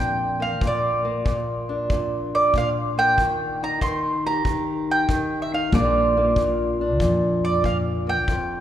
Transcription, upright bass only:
Already playing: F2
0.62 A#1
1.91 F2
3.19 D#2
5.73 A#1
7.00 F2
8.28 F1

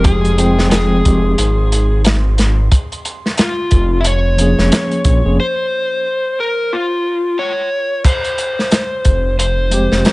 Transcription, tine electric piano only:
Already playing: F3 G#3 C4 G4
0.37 F3 G#3 C4 G5
1.05 F3 G#3 C4 G4
4.37 F3 A#3 C#4
4.41 G#4
5.24 F3 A#3 C#4 G#4
9.69 F3 G#3 C4
9.74 G4

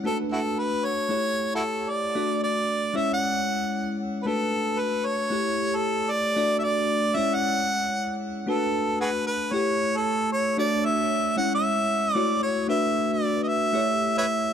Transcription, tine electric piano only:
0.04 A3 D4 F#4 B4
1.09 A3 E4 G4 C#5
2.15 A3 D4 F#4 D5
2.93 G#3 C#4 E4 C#5
4.25 A3 D4 F#4 B4
5.30 A3 E4 G4 C#5
6.36 A3 D4 F#4 D5
7.14 G#3 C#4 E4 C#5
8.46 A3 D4 F#4 B4
9.51 A3 E4 G4 C#5
10.57 A3 D4 F#4 C#5
11.36 G#3 C#4 E4 C#5
12.15 A3 E4 F#4 C#5
12.67 A3 D4 F#4 B4
13.73 A3 E4 G4 C#5

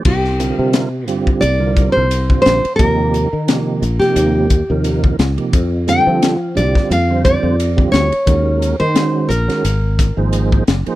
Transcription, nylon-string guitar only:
0.05 G4
1.41 D5
1.92 C5
2.42 C5
2.76 A#4
3.99 G4
5.89 G5
6.42 F5
6.57 D5
6.92 F5
7.25 D5
7.92 C#5
8.80 C5
9.29 A#4

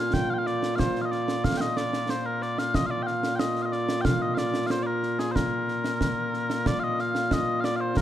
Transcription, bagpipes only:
Already playing: A#2 A#3 F4 F5
0.14 G5
0.30 F5 G5
0.39 F5
0.47 D5
0.75 C5 F5
1.01 D#5 F5
1.12 D5
1.44 F5
1.57 D#5 G5
1.77 D5
2.10 C5
2.26 A#4
2.42 D5
2.59 F5
2.75 D#5
2.86 F5
2.90 D5
3.03 G5
3.07 F5
3.36 D#5 G5
3.62 D#5 F5
3.72 D5
4.01 G5
4.05 F5
4.22 D#5
4.34 D5 F5
4.67 F5
4.71 C5
4.83 A#4 D5
5.19 G#4
5.32 A#4 C5
6.67 D5
6.80 D#5 F5
7.00 F5
7.33 D#5
7.60 F5
7.64 D5
7.76 F5
7.80 C5
7.97 A#4

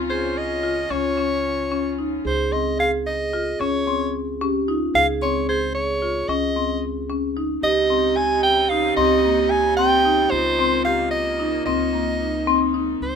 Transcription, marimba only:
0.10 G#4
0.63 F4
0.90 C#4
1.17 C#4
1.72 C#4
1.98 D#4
2.52 C4
2.79 G#4
3.33 F4
3.61 C#4
3.87 C4
4.41 C#4
4.68 D#4
5.22 C4
5.49 G#4
6.02 F4
6.29 C#4
6.56 C4
7.10 C#4
7.37 D#4
7.90 C4
8.17 G4
8.71 D#4
8.97 C4
9.25 A#3
9.79 C4
10.05 D#4
10.59 C4
10.86 G4
11.39 D#4
11.67 C4
11.93 A#3
12.47 C4
12.74 D#4

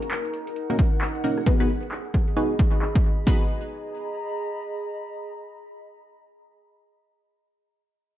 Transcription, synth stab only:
0.70 A#3 C#4 D#4 F#4 A#4
1.24 A#3 C#4 D#4 F#4 A#4
1.46 B3 D#4 F#4 G#4 B4
1.60 B3 D#4 F#4 G#4 B4
2.37 B3 D#4 F#4 G#4 B4
3.27 B3 D#4 F#4 G#4 B4

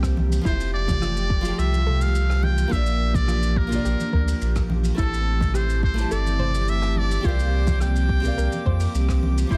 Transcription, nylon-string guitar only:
Already playing: C4 G4 A#4 D5 F5
0.41 F3 F4 G4
0.47 A4 E5
1.41 F3 F4 G4
1.46 A4 G5
2.68 A#3 F4 G4
2.73 C5 D5
3.67 A#3 F4 G4
3.73 C5 D5
4.95 A3 E4 G4
5.00 C5 A5
5.94 A3 E4 G4
5.99 C5 A5
7.21 C4 G4 A#4
7.26 D5 F5
8.20 C4 G4 A#4
8.26 D5 F5
9.47 F3 F4 G4
9.53 A4

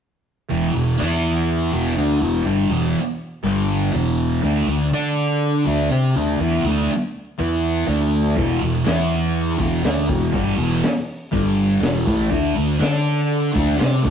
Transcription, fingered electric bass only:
0.51 E1
0.76 E1
1.01 E2
1.73 E1
1.97 D2
2.22 E1
2.46 G1
2.70 E1
3.43 G1
3.94 E1
4.43 D2
4.67 D2
4.92 D3
5.66 D2
5.90 C3
6.16 D2
6.40 E2
6.63 D2
7.39 E2
7.88 D2
8.37 E1
8.62 E1
8.86 E2
9.60 E1
9.84 D2
10.09 E1
10.34 G1
10.58 E1
11.34 G1
11.81 E1
12.07 A1
12.31 D2
12.57 D2
12.81 D3
13.56 D2
13.81 C3
14.05 D2

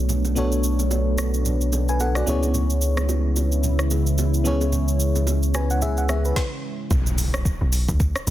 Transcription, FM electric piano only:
Already playing: B3 D4 F#4 A4 C#5
0.35 B3 D4 F#4 A4 C#5
1.89 B4 G#5
2.01 A4 F#5
2.16 F#4 D5
2.26 B3 C#4 E4 G#4 C#5
4.44 B3 C#4 E4 G#4 C#5
5.55 B4 G#5
5.71 F#5
5.82 G#4 E5
5.98 F#5
6.09 G#4 E5
6.25 B4

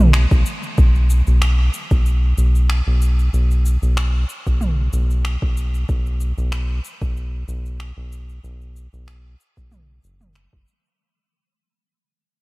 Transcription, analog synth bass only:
Already playing: B1
0.31 B1
0.78 B1
1.27 B1
1.91 B1
2.38 B1
2.87 B1
3.33 B1
3.82 B1
4.47 B1
4.93 B1
5.42 B1
5.89 B1
6.38 B1
7.01 B1
7.48 B1
7.97 B1
8.44 B1
8.93 B1
9.57 B1
10.04 F#1
10.53 F#1

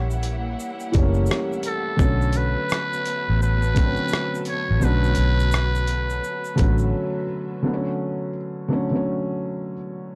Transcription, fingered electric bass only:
Already playing: A#1
0.95 F#1
2.00 B1
3.30 A1
4.71 A1
4.82 B1
5.18 B1
6.60 A1

